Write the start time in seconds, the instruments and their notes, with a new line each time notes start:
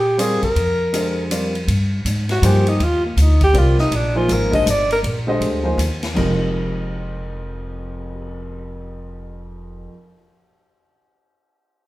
Already playing: upright bass A#2, alto saxophone G4
0.17 grand piano G3 C4 F4 A#4 D5, alto saxophone G#4, hi-hat pedal, ride
0.42 alto saxophone A#4, muted upright bass stroke, kick, ride
0.56 upright bass F2, ride
0.93 grand piano D3 G#3 G4 C5 D#5, hi-hat pedal, ride
1.30 grand piano G3 C4 F4 A#4 D5, hi-hat pedal, ride
1.55 ride
1.68 upright bass G2, ride
2.05 upright bass G#2, hi-hat pedal, ride
2.29 alto saxophone F#4, snare, ride
2.42 upright bass G2, grand piano F3 A#3 D#4 G#4 C5, alto saxophone G4, hi-hat pedal, ride
2.67 alto saxophone D#4, ride
2.80 upright bass D#2, alto saxophone F4, ride
3.05 alto saxophone A#3
3.17 upright bass D2, hi-hat pedal, ride
3.21 alto saxophone D#4
3.41 alto saxophone G4, kick, ride
3.53 upright bass C2, grand piano G3 C4 F4 A#4 D5, ride
3.58 alto saxophone F4
3.78 alto saxophone D#4, snare
3.91 upright bass A#1, ride
3.95 alto saxophone D4
4.15 grand piano F3 A#3 D#4 G#4 C5, alto saxophone F4
4.28 upright bass G#1, hi-hat pedal, ride
4.33 alto saxophone A#4
4.51 grand piano G#3 D4 G4 C5 D#5, alto saxophone D#5, kick, ride
4.66 upright bass G1, hi-hat pedal, ride
4.70 alto saxophone D5
4.90 alto saxophone A#4, ride
5.03 upright bass A#1, ride
5.27 grand piano D3 G#3 G4 C5 D#5
5.41 upright bass D2, ride
5.63 grand piano F3 A#3 D#4 G#4 C5
5.78 upright bass D#2, hi-hat pedal, ride
6.03 snare, ride
6.14 upright bass F1, grand piano F2 F3 G#3 D#4 G4 A#4, kick, crash
6.40 cymbal swell